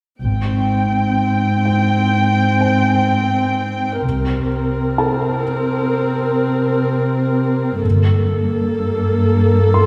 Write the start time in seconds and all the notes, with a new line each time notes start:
0.22 G#1 G#2 C4 G5
1.66 G5
2.61 C5 G#5
4.03 C2 C3 C4 A#4
4.98 A4 A5
7.83 G1 G2 A#3 A4
9.74 C6